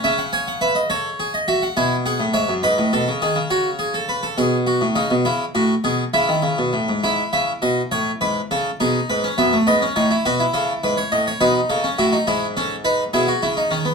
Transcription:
<<
  \new Staff \with { instrumentName = "Harpsichord" } { \time 12/8 \key cis \phrygian \tempo 4. = 69 << { e''16 fis''16 gis''16 fis''16 e''16 dis''16 cis''8. dis''16 e''16 fis''16 gis''8 fis''8 e''8 dis''4. | cis''1~ cis''8 e''4. | \key e \major e''8 e''8 dis''8 cis''8 b'8 a'8 gis'8 b'8 e''8 dis''8 cis''8 b'8 | a'8 b'16 cis''16 dis''16 cis''16 b'8 a'8 fis'8 gis'8 a'8 b'8 gis'4. | } \\ { cis'8 cis''8 b'8 a'8 gis'8 fis'8 e'8 gis'8 cis''8 b'8 a'8 gis'8 | fis'8 gis'16 a'16 b'16 a'16 gis'8 fis'8 dis'8 e'8 fis'8 gis'8 e'4. | e'2. dis'8. cis'16 b16 a16 b16 cis'16 dis'16 e'16 fis'16 e'16~ | e'4. dis'8. cis'16 e'16 dis'16 e'8 cis'8 dis'8 e'16 fis'16 e'16 dis'16 cis'16 b16 | } >> }
  \new Staff \with { instrumentName = "Harpsichord" } { \clef bass \time 12/8 \key cis \phrygian cis2. b,8. a,16 gis,16 fis,16 gis,16 a,16 b,16 cis16 dis16 cis16~ | cis4. b,8. a,16 cis16 b,16 cis8 a,8 b,8 cis16 dis16 cis16 b,16 a,16 gis,16 | \key e \major gis,8 cis8 b,8 a,8 gis,8 cis8 b,8 gis,8 fis,8 gis,8 a,8 b,8 | cis8 gis,8 a,8 b,8 cis8 a,8 gis,4. b,8 cis8 dis8 | }
>>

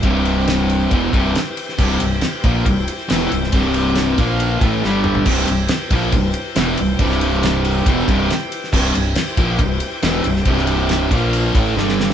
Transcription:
<<
  \new Staff \with { instrumentName = "Tonewheel organ" } { \time 4/4 \key c \mixolydian \tempo 4 = 138 << { <e' g' c'' g''>1 | <e' g' c'' g''>1~ | <e' g' c'' g''>4. <f' bes' f''>4 r8 <g' d'' g''>4 | <e' g' c'' g''>1~ |
<e' g' c'' g''>1 | <e' g' c'' g''>1~ | <e' g' c'' g''>4. <f' bes' f''>4 r8 <g' d'' g''>4 | } \\ { r1 | r1 | r1 | <a b c' d' e' f' g' a' b' c'' d''>8 r2. r8 |
r1 | r1 | r1 | } >> }
  \new Staff \with { instrumentName = "Distorted electric guitar" } { \clef bass \time 4/4 \key c \mixolydian <c, g, c>2 <e, b, e>8 <c, g, c>8 r4 | <c, g, c>8 <c, g,>8 r8 <bes, f bes>8 <c, g,>8 r8 <e, b, e>8 <c, g,>8 | <c, g, c>4. <bes, f bes>4 <a, e a>8 <g, d g>4 | <c, g, c>8 <c, g,>8 r8 <bes, f bes>8 <c, g,>8 r8 <e, b, e>8 <c, g,>8 |
<c, g, c>2 <e, b, e>8 <c, g, c>8 r4 | <c, g, c>8 <c, g,>8 r8 <bes, f bes>8 <c, g,>8 r8 <e, b, e>8 <c, g,>8 | <c, g, c>4. <bes, f bes>4 <a, e a>8 <g, d g>4 | }
  \new Staff \with { instrumentName = "Overdriven electric guitar" } { \clef bass \time 4/4 \key c \mixolydian <c, g, c>2 <e, b, e>8 <c, g, c>8 r4 | <c, g, c>8 <c, g,>8 r8 <bes, f bes>8 <c, g,>8 r8 <e, b, e>8 <c, g,>8 | <c, g, c>4. <bes, f bes>4 <a, e a>8 <g, d g>4 | <c, g, c>8 <c, g,>8 r8 <bes, f bes>8 <c, g,>8 r8 <e, b, e>8 <c, g,>8 |
<c, g, c>2 <e, b, e>8 <c, g, c>8 r4 | <c, g, c>8 <c, g,>8 r8 <bes, f bes>8 <c, g,>8 r8 <e, b, e>8 <c, g,>8 | <c, g, c>4. <bes, f bes>4 <a, e a>8 <g, d g>4 | }
  \new Staff \with { instrumentName = "Fingered electric bass" } { \clef bass \time 4/4 \key c \mixolydian c,,2 e,,8 c,,8 r4 | c,,8 c,,8 r8 bes,,8 c,,8 r8 e,,8 c,,8 | c,,4. bes,,4 a,,8 g,,4 | c,,8 c,,8 r8 bes,,8 c,,8 r8 e,,8 c,,8 |
c,,2 e,,8 c,,8 r4 | c,,8 c,,8 r8 bes,,8 c,,8 r8 e,,8 c,,8 | c,,4. bes,,4 a,,8 g,,4 | }
  \new DrumStaff \with { instrumentName = "Drums" } \drummode { \time 4/4 <bd cymr>8 cymr8 <cymr sn>8 cymr8 <bd cymr>8 <bd cymr>8 <cymr sn>8 cymr16 sn16 | <cymc bd>8 cymr8 <cymr sn>8 <bd cymr>8 <bd cymr>8 cymr8 <cymr sn>8 cymr16 sn16 | <bd cymr>8 cymr8 <cymr sn>8 <bd cymr>8 cymr8 <bd cymr>8 sn8 toml16 tomfh16 | <cymc bd>16 sn16 cymr8 <cymr sn>8 <bd cymr>8 <bd cymr>8 cymr8 <cymr sn>8 cymr8 |
<bd cymr>16 sn16 cymr8 <cymr sn>8 cymr8 <bd cymr>8 <bd cymr>8 <cymr sn>8 cymr16 sn16 | <cymc bd>8 cymr8 <cymr sn>8 <bd cymr>8 <bd cymr>8 cymr8 <cymr sn>8 cymr16 sn16 | <bd cymr>16 sn16 cymr8 <cymr sn>8 <bd cymr>8 cymr8 <bd cymr>8 sn16 sn16 sn16 sn16 | }
>>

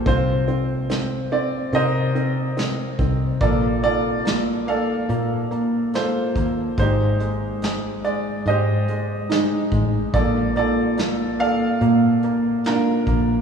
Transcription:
<<
  \new Staff \with { instrumentName = "Felt piano" } { \time 4/4 \key bes \major \tempo 4 = 72 g'8 r2. r8 | r1 | r2. ees'4~ | ees'8 r2. r8 | }
  \new Staff \with { instrumentName = "Grand piano" } { \time 4/4 \key bes \major << { c''4. d''8 ees''2 | d''8 d''4 f''4. c''4 | c''4. d''8 ees''2 | d''8 d''4 f''4. bes'4 | } \\ { f'2 <bes' c''>2 | <f' a'>8 <f' a'>4 <a' d''>4. <f' a'>4 | <ees' g'>2 <g' c''>2 | <f' a'>8 <f' a'>4 <a' d''>4. <d' f'>4 | } >> }
  \new Staff \with { instrumentName = "Grand piano" } { \time 4/4 \key bes \major c'8 c'8 c'8 c'8 c'8 c'8 c'8 c'8 | bes8 bes8 bes8 bes8 bes8 bes8 bes8 bes8 | aes8 aes8 aes8 aes8 aes8 aes8 aes8 aes8 | bes8 bes8 bes8 bes8 bes8 bes8 bes8 bes8 | }
  \new Staff \with { instrumentName = "Fingered electric bass" } { \clef bass \time 4/4 \key bes \major c,2 c4. c,8 | bes,,2 bes,4. ees,8 | aes,,2 aes,4. a,,8 | bes,,2 bes,4. bes,,8 | }
  \new DrumStaff \with { instrumentName = "Drums" } \drummode { \time 4/4 <hh bd>8 hh8 <hh sn>8 hh8 hh8 hh8 <hh sn>8 <hh bd>8 | <hh bd>8 hh8 <hh sn>8 hh8 hh8 hh8 <hh sn>8 <hh bd>8 | <hh bd>8 hh8 <hh sn>8 hh8 hh8 hh8 <hh sn>8 <hh bd>8 | <hh bd>8 hh8 <hh sn>8 hh8 hh8 hh8 <hh sn>8 <hh bd>8 | }
>>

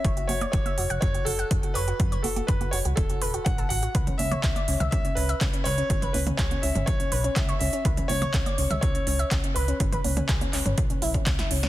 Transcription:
<<
  \new Staff \with { instrumentName = "Grand piano" } { \time 4/4 \key cis \phrygian \tempo 4 = 123 e''8 cis''8 cis''4 cis''8 a'4 b'8~ | b'8 a'8 b'8 cis''8 a'4 fis''8 fis''8~ | fis''8 e''8 e''4 e''8 b'4 cis''8~ | cis''8 b'8 cis''8 e''8 cis''4 e''8 e''8~ |
e''8 cis''4. cis''4. b'8~ | b'2. r4 | }
  \new Staff \with { instrumentName = "Synth pluck" } { \time 4/4 \key cis \phrygian cis''16 fis'16 fis'16 d''16 fis'16 e''16 fis'16 fis''16 fis'16 fis'16 fis'16 fis''16 r16 fis'16 cis''16 fis'16 | fis'16 cis''16 fis'16 fis'16 b'16 fis'16 fis'16 fis'16 r16 fis'16 b'16 fis'16 fis'16 a'16 fis'16 fis'16 | b'16 cis'16 cis'16 cis''16 cis'16 d''16 cis'16 e''16 cis'16 cis'16 cis'16 e''16 cis'16 cis'16 b'16 cis'16 | cis'16 b'16 cis'16 cis'16 gis'16 cis'16 cis'16 cis'16 r16 cis'16 b'16 cis'16 r16 cis''16 cis'16 cis'16 |
b'16 cis'16 cis'16 cis''16 cis'16 d''16 cis'16 e''16 cis'16 cis'16 cis'16 e''16 cis'16 cis'16 b'16 cis'16 | cis'16 b'16 cis'16 cis'16 gis'16 cis'16 cis'16 cis'16 r16 cis'16 e'16 cis'16 cis'16 e'16 cis'16 cis'16 | }
  \new Staff \with { instrumentName = "Analog synth bass" } { \clef bass \time 4/4 \key cis \phrygian fis,,16 r16 fis,,16 r16 fis,,16 r16 fis,,16 fis,,16 fis,,16 r16 fis,,16 r16 fis,,16 r16 fis,,16 r16 | fis,16 r16 fis,,16 r16 fis,,16 r16 fis,,16 cis,16 e,,16 r16 e,,16 r16 a,,16 r16 a,,16 r16 | cis,16 r16 cis,16 r16 cis,16 r16 cis,16 cis,16 r8 cis,16 r16 cis,16 r16 cis,16 r16 | gis,,16 r16 cis,16 r16 cis,16 r16 cis,16 gis,,16 b,,16 r16 b,,16 r16 cis,16 r16 cis,16 r16 |
cis,16 r16 cis,16 r16 cis,16 r16 cis,16 cis,16 cis,16 r16 cis,16 r16 cis,16 r16 cis,16 r16 | gis,,16 r16 cis,16 r16 cis,16 r16 cis,16 gis,,16 b,,16 r16 b,,16 r16 cis,16 r16 cis,16 r16 | }
  \new DrumStaff \with { instrumentName = "Drums" } \drummode { \time 4/4 <hh bd>16 hh16 <cgho hho>16 <cgho hh>16 <hh bd>16 <cgho hh>16 hho16 hh16 <hh bd>16 hh16 hho16 hh16 <hh bd>16 hh16 hho16 hh16 | <hh bd>16 hh16 <cgho hho>16 <cgho hh>16 <hh bd>16 <cgho hh>16 hho16 hh16 <hh bd>16 hh16 hho16 hh16 <hh bd>16 hh16 hho16 hh16 | <hh bd>16 <hh toml>16 <cgho hho>16 <cgho hh toml>16 <hc hh bd>16 <cgho hh>16 hho16 <hh toml>16 <hh bd>16 hh16 hho16 hh16 <hc hh bd>16 hh16 hho16 hh16 | <hh bd>16 <hh toml>16 <cgho hho>16 <cgho hh toml>16 <hc hh bd>16 <cgho hh>16 hho16 <hh toml>16 <hh bd>16 hh16 hho16 hh16 <hc hh bd>16 hh16 hho16 hh16 |
<hh bd>16 <hh toml>16 <cgho hho>16 <cgho hh toml>16 <hc hh bd>16 <cgho hh>16 hho16 <hh toml>16 <hh bd>16 hh16 hho16 hh16 <hc hh bd>16 hh16 hho16 hh16 | <hh bd>16 <hh toml>16 <cgho hho>16 <cgho hh toml>16 <hc hh bd>16 <cgho hh>16 <hc hho>16 <hh toml>16 <hh bd>16 hh16 hho16 <hh bd>16 <hc hh bd sn>16 <hh sn>16 hho16 <hh sn>16 | }
>>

